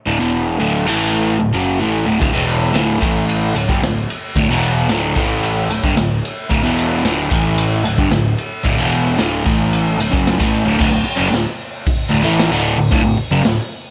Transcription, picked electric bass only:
0.07 0.20 D1 medium
0.20 0.58 E1 medium
0.60 0.86 D1 medium
0.87 1.37 A1 medium
1.41 1.54 D1 medium
1.54 1.79 F#1 medium
1.81 2.06 A1 medium
2.07 2.20 D1 medium
2.21 2.32 D1 medium
2.33 2.71 E1 medium
2.74 2.99 D1 medium
3.02 3.51 A1 medium
3.55 3.68 D1 medium
3.69 3.81 G1 medium
3.82 4.07 D1 medium
4.36 4.48 D1 loud
4.48 4.86 E1 medium
4.89 5.14 D1 medium
5.16 5.66 A1 medium
5.69 5.82 D1 medium
5.83 5.95 G1 medium
5.96 6.21 D1 medium
6.51 6.62 D1 medium
6.63 7.01 E1 medium
7.03 7.28 D1 loud
7.31 7.81 A1 loud
7.83 7.96 D1 medium
7.98 8.11 G1 medium
8.11 8.36 D1 medium
8.65 8.77 D1 medium
8.78 9.15 E1 medium
9.19 9.44 D1 medium
9.46 9.96 A1 medium
9.99 10.11 D1 medium
10.13 10.38 F#1 medium
10.40 10.65 A1 medium
10.65 10.78 D1 medium
10.80 10.92 D1 medium
10.93 11.05 D1 medium
11.07 muted picked electric bass stroke soft
11.20 11.32 F#1 medium
11.33 11.45 D1 medium
12.12 12.24 D1 medium
12.25 12.50 A1 medium
12.52 12.76 D1 medium
12.78 12.90 D1 medium
12.92 13.04 D1 medium
13.05 13.17 D1 medium
13.18 muted picked electric bass stroke soft
13.31 13.43 F#1 medium
13.44 13.56 D1 medium

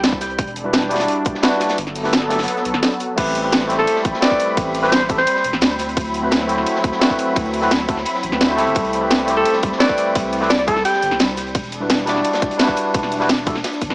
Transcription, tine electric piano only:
0.64 0.88 G3 medium
0.64 0.88 D4 medium
0.64 0.89 E4 medium
0.64 0.89 F#4 medium
0.64 0.89 B4 medium
0.89 1.40 G3 medium
0.89 1.41 D4 medium
0.89 1.41 E4 medium
0.89 1.42 F#4 medium
0.93 1.42 D5 medium
1.42 1.76 G3 medium
1.42 1.77 D4 medium
1.42 1.77 E4 medium
1.42 1.77 F#4 medium
1.42 1.78 B4 loud
2.03 2.12 A3 medium
2.03 2.12 D4 medium
2.03 2.12 F#4 medium
2.03 2.12 G4 medium
2.03 2.13 B4 loud
2.29 2.38 A3 medium
2.29 2.38 D4 medium
2.29 2.38 F#4 medium
2.29 2.39 G4 medium
2.29 2.39 A4 loud
3.16 3.40 A3 medium
3.16 3.40 C4 medium
3.16 3.40 E4 medium
3.16 3.41 G4 medium
3.16 3.41 B4 loud
3.42 3.66 A3 medium
3.42 3.68 C4 medium
3.42 3.68 E4 medium
3.42 3.68 G4 medium
3.42 3.68 B4 medium
3.68 4.19 A3 medium
3.68 4.20 C4 medium
3.68 4.20 E4 medium
3.68 4.21 G4 medium
3.72 4.21 C5 loud
4.20 4.80 A3 medium
4.20 4.81 C4 medium
4.20 4.81 E4 medium
4.20 4.82 G4 medium
4.25 4.82 B4 medium
4.82 4.91 A3 medium
4.82 4.91 C4 medium
4.82 4.91 E4 medium
4.82 4.92 G4 medium
4.82 4.92 B4 loud
5.08 5.17 A3 medium
5.08 5.17 C4 medium
5.08 5.18 E4 medium
5.08 5.18 G4 medium
5.08 5.18 A4 loud
6.22 6.46 A3 medium
6.22 6.47 C4 medium
6.22 6.47 E4 medium
6.22 6.47 F#4 medium
6.22 6.48 B4 medium
6.47 6.98 A3 medium
6.47 6.99 C4 medium
6.47 6.99 E4 medium
6.47 7.00 F#4 medium
6.52 7.01 C5 medium
6.99 7.59 A3 medium
6.99 7.60 C4 medium
6.99 7.60 E4 medium
6.99 7.61 F#4 medium
7.04 7.62 B4 loud
7.61 7.70 A3 medium
7.61 7.70 C4 medium
7.61 7.70 E4 medium
7.61 7.71 F#4 medium
7.61 7.71 B4 loud
7.88 7.96 A3 medium
7.88 7.96 C4 medium
7.88 7.97 E4 medium
7.88 7.97 F#4 medium
7.88 7.97 A4 loud
8.31 8.44 A3 medium
8.31 8.45 C4 medium
8.31 8.45 E4 medium
8.31 8.45 F#4 medium
8.31 8.45 B4 medium
8.48 8.55 A3 medium
8.48 8.56 C4 medium
8.48 8.56 E4 medium
8.48 8.57 F#4 medium
8.48 8.57 C5 loud
8.56 8.99 A3 loud
8.56 8.99 C4 medium
8.56 9.00 E4 medium
8.56 9.00 G4 medium
8.61 9.01 A4 loud
9.01 9.25 A3 medium
9.01 9.26 C4 medium
9.01 9.26 E4 medium
9.01 9.26 G4 medium
9.01 9.27 B4 medium
9.26 9.77 A3 medium
9.26 9.78 C4 medium
9.26 9.78 E4 medium
9.26 9.79 G4 medium
9.30 9.79 C5 loud
9.78 10.38 A3 medium
9.78 10.39 C4 medium
9.78 10.39 E4 medium
9.78 10.40 G4 medium
9.83 10.41 B4 loud
10.40 10.49 A3 medium
10.40 10.49 C4 medium
10.40 10.49 E4 medium
10.40 10.50 G4 medium
10.40 10.50 B4 loud
10.67 10.75 A3 medium
10.67 10.75 C4 medium
10.67 10.76 E4 medium
10.67 10.76 G4 medium
10.67 10.76 A4 loud
11.80 12.04 G3 medium
11.80 12.05 D4 medium
11.80 12.05 E4 medium
11.80 12.05 F#4 medium
11.80 12.06 B4 medium
12.05 12.56 G3 medium
12.05 12.57 D4 medium
12.05 12.58 E4 medium
12.05 12.58 F#4 medium
12.10 12.59 D5 loud
12.57 13.17 G3 medium
12.57 13.18 D4 medium
12.57 13.19 E4 medium
12.57 13.19 F#4 medium
12.62 13.20 B4 loud
13.20 13.28 G3 medium
13.20 13.28 D4 medium
13.20 13.29 E4 medium
13.20 13.29 F#4 medium
13.20 13.29 B4 loud
13.46 13.54 G3 medium
13.46 13.54 D4 medium
13.46 13.55 E4 medium
13.46 13.55 F#4 medium
13.46 13.55 A4 loud
13.89 13.95 G3 medium
13.89 13.95 D4 medium
13.89 13.95 E4 medium
13.89 13.95 F#4 medium
13.89 13.95 B4 medium

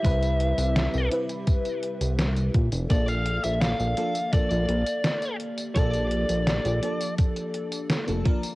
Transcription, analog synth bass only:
0.05 0.54 C2 loud
0.58 0.88 C2 medium
0.94 1.09 C2 loud
2.01 2.50 C2 medium
2.55 2.70 A#2 medium
2.72 2.87 F1 loud
2.90 3.39 A#1 loud
3.44 3.74 A#1 medium
3.80 3.95 A#1 loud
4.33 4.47 A#1 soft
4.51 4.66 A#1 loud
4.69 4.84 A#1 loud
5.76 6.25 A#1 loud
6.30 6.60 A#1 medium
6.65 6.80 A#1 loud
8.09 8.23 F1 medium

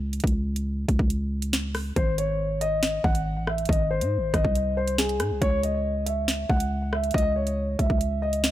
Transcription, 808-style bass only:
0.00 0.21 C#2 loud
0.24 0.86 C#2 loud
0.88 0.99 C#2 loud
0.99 1.92 C#2 loud
1.96 3.00 G#1 loud
3.04 3.38 G#1 loud
3.37 3.67 A1 loud
3.69 4.03 G#1 loud
4.01 4.19 G#2 loud
4.18 4.33 G#1 loud
4.34 4.44 G#1 loud
4.45 5.22 C2 loud
5.20 5.32 G#2 loud
5.31 5.41 C2 loud
5.42 6.46 C#2 loud
6.50 7.12 C#2 loud
7.14 7.76 C#2 loud
7.79 7.89 C#2 loud
7.90 8.51 C#2 loud

